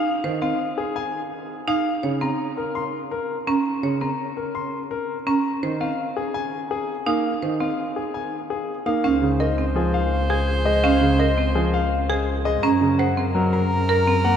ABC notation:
X:1
M:5/4
L:1/8
Q:1/4=167
K:Fphr
V:1 name="Grand piano"
z2 f z A a z3 f | z2 b z B c' z B z b | z2 b z B c' z B z b | z2 f z A a z A z f |
z2 f z A a z A z f | [K:Db] f z e z A f z A z e | f z e z A f z A z e | b z g z B b z B z g |]
V:2 name="Soprano saxophone"
z8 z2 | z8 z2 | z8 z2 | z8 z2 |
z8 z2 | [K:Db] c8- c2- | c8- c z | B8- B2 |]
V:3 name="Marimba"
z c C z6 E | z d C z6 D | z d C z6 D | z c C z6 E |
z c C z6 E | [K:Db] D z B C z3 A z2 | D z B C z3 A z2 | D z c C z3 B C z |]
V:4 name="Grand piano" clef=bass
z E, z8 | z D, z8 | z D, z8 | z E, z6 z B, |
z E, z6 z B, | [K:Db] z D, z2 F, z4 A, | z D, z2 F, z4 A, | z D, z2 G, z4 B, |]
V:5 name="Double bass" clef=bass
z8 z2 | z8 z2 | z8 z2 | z8 z2 |
z8 z2 | [K:Db] D,,8- D,,2- | D,,8- D,,2 | G,,8- G,,2 |]